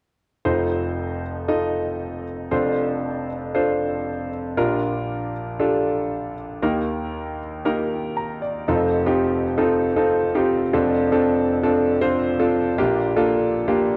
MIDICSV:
0, 0, Header, 1, 2, 480
1, 0, Start_track
1, 0, Tempo, 513699
1, 425, Time_signature, 4, 2, 24, 8
1, 13053, End_track
2, 0, Start_track
2, 0, Title_t, "Grand piano"
2, 0, Program_c, 0, 0
2, 422, Note_on_c, 0, 29, 48
2, 422, Note_on_c, 0, 65, 53
2, 422, Note_on_c, 0, 72, 66
2, 423, Note_on_c, 0, 63, 59
2, 423, Note_on_c, 0, 69, 54
2, 425, Note_on_c, 0, 41, 52
2, 599, Control_c, 0, 64, 127
2, 1122, Note_off_c, 0, 63, 0
2, 1122, Note_off_c, 0, 65, 0
2, 1122, Note_off_c, 0, 69, 0
2, 1122, Note_off_c, 0, 72, 0
2, 1386, Note_on_c, 0, 69, 53
2, 1387, Note_on_c, 0, 63, 58
2, 1387, Note_on_c, 0, 65, 52
2, 1388, Note_on_c, 0, 75, 68
2, 2084, Note_off_c, 0, 63, 0
2, 2084, Note_off_c, 0, 69, 0
2, 2085, Note_off_c, 0, 65, 0
2, 2085, Note_off_c, 0, 75, 0
2, 2308, Note_off_c, 0, 29, 0
2, 2310, Note_off_c, 0, 41, 0
2, 2347, Note_on_c, 0, 69, 55
2, 2348, Note_on_c, 0, 41, 55
2, 2348, Note_on_c, 0, 72, 62
2, 2349, Note_on_c, 0, 29, 53
2, 2349, Note_on_c, 0, 62, 59
2, 2349, Note_on_c, 0, 65, 57
2, 2359, Control_c, 0, 64, 0
2, 2520, Control_c, 0, 64, 127
2, 3045, Note_off_c, 0, 69, 0
2, 3046, Note_off_c, 0, 62, 0
2, 3046, Note_off_c, 0, 65, 0
2, 3046, Note_off_c, 0, 72, 0
2, 3311, Note_on_c, 0, 65, 57
2, 3312, Note_on_c, 0, 72, 64
2, 3314, Note_on_c, 0, 62, 63
2, 3314, Note_on_c, 0, 69, 54
2, 4008, Note_off_c, 0, 65, 0
2, 4008, Note_off_c, 0, 72, 0
2, 4009, Note_off_c, 0, 62, 0
2, 4009, Note_off_c, 0, 69, 0
2, 4232, Note_off_c, 0, 29, 0
2, 4232, Note_off_c, 0, 41, 0
2, 4270, Note_on_c, 0, 46, 57
2, 4270, Note_on_c, 0, 62, 64
2, 4270, Note_on_c, 0, 67, 54
2, 4271, Note_on_c, 0, 65, 60
2, 4272, Note_on_c, 0, 34, 57
2, 4272, Note_on_c, 0, 70, 73
2, 4280, Control_c, 0, 64, 0
2, 4448, Control_c, 0, 64, 127
2, 4967, Note_off_c, 0, 67, 0
2, 4968, Note_off_c, 0, 62, 0
2, 4968, Note_off_c, 0, 65, 0
2, 4968, Note_off_c, 0, 70, 0
2, 5227, Note_on_c, 0, 62, 62
2, 5227, Note_on_c, 0, 67, 58
2, 5228, Note_on_c, 0, 65, 57
2, 5229, Note_on_c, 0, 69, 66
2, 5926, Note_off_c, 0, 62, 0
2, 5926, Note_off_c, 0, 65, 0
2, 5926, Note_off_c, 0, 67, 0
2, 5927, Note_off_c, 0, 69, 0
2, 6153, Note_off_c, 0, 46, 0
2, 6154, Note_off_c, 0, 34, 0
2, 6187, Note_on_c, 0, 67, 59
2, 6188, Note_on_c, 0, 39, 56
2, 6188, Note_on_c, 0, 58, 60
2, 6190, Note_on_c, 0, 51, 53
2, 6191, Note_on_c, 0, 63, 58
2, 6191, Note_on_c, 0, 70, 70
2, 6203, Control_c, 0, 64, 0
2, 6338, Control_c, 0, 64, 127
2, 6886, Note_off_c, 0, 67, 0
2, 6887, Note_off_c, 0, 58, 0
2, 6888, Note_off_c, 0, 63, 0
2, 6888, Note_off_c, 0, 70, 0
2, 7149, Note_on_c, 0, 58, 60
2, 7149, Note_on_c, 0, 67, 63
2, 7152, Note_on_c, 0, 63, 63
2, 7152, Note_on_c, 0, 70, 75
2, 7632, Note_on_c, 0, 82, 52
2, 7847, Note_off_c, 0, 58, 0
2, 7847, Note_off_c, 0, 67, 0
2, 7848, Note_off_c, 0, 63, 0
2, 7848, Note_off_c, 0, 70, 0
2, 7854, Note_off_c, 0, 82, 0
2, 7866, Note_on_c, 0, 74, 54
2, 8072, Note_off_c, 0, 39, 0
2, 8072, Note_off_c, 0, 51, 0
2, 8091, Note_off_c, 0, 74, 0
2, 8109, Note_on_c, 0, 29, 56
2, 8110, Note_on_c, 0, 60, 60
2, 8111, Note_on_c, 0, 41, 59
2, 8111, Note_on_c, 0, 63, 57
2, 8113, Note_on_c, 0, 65, 59
2, 8113, Note_on_c, 0, 69, 70
2, 8122, Control_c, 0, 64, 0
2, 8270, Control_c, 0, 64, 127
2, 8371, Note_off_c, 0, 60, 0
2, 8372, Note_off_c, 0, 63, 0
2, 8373, Note_off_c, 0, 65, 0
2, 8373, Note_off_c, 0, 69, 0
2, 8468, Note_on_c, 0, 63, 58
2, 8469, Note_on_c, 0, 60, 64
2, 8470, Note_on_c, 0, 65, 59
2, 8471, Note_on_c, 0, 67, 74
2, 8818, Note_off_c, 0, 60, 0
2, 8818, Note_off_c, 0, 63, 0
2, 8818, Note_off_c, 0, 65, 0
2, 8819, Note_off_c, 0, 67, 0
2, 8950, Note_on_c, 0, 69, 71
2, 8951, Note_on_c, 0, 60, 68
2, 8951, Note_on_c, 0, 63, 64
2, 8953, Note_on_c, 0, 65, 64
2, 9211, Note_off_c, 0, 63, 0
2, 9211, Note_off_c, 0, 69, 0
2, 9212, Note_off_c, 0, 60, 0
2, 9213, Note_off_c, 0, 65, 0
2, 9310, Note_on_c, 0, 60, 66
2, 9310, Note_on_c, 0, 65, 60
2, 9311, Note_on_c, 0, 63, 60
2, 9311, Note_on_c, 0, 69, 74
2, 9571, Note_off_c, 0, 60, 0
2, 9571, Note_off_c, 0, 63, 0
2, 9571, Note_off_c, 0, 65, 0
2, 9572, Note_off_c, 0, 69, 0
2, 9669, Note_on_c, 0, 60, 68
2, 9670, Note_on_c, 0, 63, 58
2, 9672, Note_on_c, 0, 65, 60
2, 9672, Note_on_c, 0, 67, 72
2, 9930, Note_off_c, 0, 60, 0
2, 9931, Note_off_c, 0, 63, 0
2, 9932, Note_off_c, 0, 65, 0
2, 9932, Note_off_c, 0, 67, 0
2, 9991, Note_off_c, 0, 29, 0
2, 9992, Note_off_c, 0, 41, 0
2, 10028, Note_on_c, 0, 41, 63
2, 10029, Note_on_c, 0, 60, 68
2, 10030, Note_on_c, 0, 29, 56
2, 10030, Note_on_c, 0, 62, 63
2, 10030, Note_on_c, 0, 65, 60
2, 10031, Note_on_c, 0, 69, 75
2, 10039, Control_c, 0, 64, 0
2, 10203, Control_c, 0, 64, 127
2, 10290, Note_off_c, 0, 60, 0
2, 10290, Note_off_c, 0, 62, 0
2, 10291, Note_off_c, 0, 65, 0
2, 10291, Note_off_c, 0, 69, 0
2, 10391, Note_on_c, 0, 62, 62
2, 10392, Note_on_c, 0, 69, 73
2, 10393, Note_on_c, 0, 65, 60
2, 10394, Note_on_c, 0, 60, 73
2, 10738, Note_off_c, 0, 62, 0
2, 10738, Note_off_c, 0, 69, 0
2, 10739, Note_off_c, 0, 60, 0
2, 10739, Note_off_c, 0, 65, 0
2, 10870, Note_on_c, 0, 60, 70
2, 10872, Note_on_c, 0, 62, 60
2, 10872, Note_on_c, 0, 65, 57
2, 10872, Note_on_c, 0, 69, 73
2, 11130, Note_off_c, 0, 60, 0
2, 11131, Note_off_c, 0, 62, 0
2, 11131, Note_off_c, 0, 65, 0
2, 11131, Note_off_c, 0, 69, 0
2, 11225, Note_on_c, 0, 72, 78
2, 11226, Note_on_c, 0, 60, 69
2, 11226, Note_on_c, 0, 62, 60
2, 11226, Note_on_c, 0, 65, 65
2, 11488, Note_off_c, 0, 60, 0
2, 11488, Note_off_c, 0, 62, 0
2, 11488, Note_off_c, 0, 65, 0
2, 11488, Note_off_c, 0, 72, 0
2, 11582, Note_on_c, 0, 60, 66
2, 11584, Note_on_c, 0, 69, 75
2, 11585, Note_on_c, 0, 62, 57
2, 11586, Note_on_c, 0, 65, 60
2, 11846, Note_off_c, 0, 60, 0
2, 11846, Note_off_c, 0, 69, 0
2, 11847, Note_off_c, 0, 62, 0
2, 11847, Note_off_c, 0, 65, 0
2, 11909, Note_off_c, 0, 41, 0
2, 11910, Note_off_c, 0, 29, 0
2, 11944, Note_on_c, 0, 58, 67
2, 11944, Note_on_c, 0, 62, 67
2, 11944, Note_on_c, 0, 65, 63
2, 11944, Note_on_c, 0, 67, 82
2, 11945, Note_on_c, 0, 34, 60
2, 11945, Note_on_c, 0, 46, 62
2, 11959, Control_c, 0, 64, 0
2, 12117, Control_c, 0, 64, 127
2, 12206, Note_off_c, 0, 58, 0
2, 12206, Note_off_c, 0, 62, 0
2, 12206, Note_off_c, 0, 65, 0
2, 12206, Note_off_c, 0, 67, 0
2, 12300, Note_on_c, 0, 65, 66
2, 12301, Note_on_c, 0, 69, 77
2, 12302, Note_on_c, 0, 58, 71
2, 12302, Note_on_c, 0, 62, 64
2, 12651, Note_off_c, 0, 65, 0
2, 12652, Note_off_c, 0, 58, 0
2, 12652, Note_off_c, 0, 62, 0
2, 12652, Note_off_c, 0, 69, 0
2, 12780, Note_on_c, 0, 65, 61
2, 12781, Note_on_c, 0, 58, 70
2, 12781, Note_on_c, 0, 67, 76
2, 12782, Note_on_c, 0, 62, 60
2, 13044, Note_off_c, 0, 58, 0
2, 13044, Note_off_c, 0, 65, 0
2, 13044, Note_off_c, 0, 67, 0
2, 13045, Note_off_c, 0, 62, 0
2, 13053, Note_off_c, 0, 34, 0
2, 13053, Note_off_c, 0, 46, 0
2, 13053, End_track
0, 0, End_of_file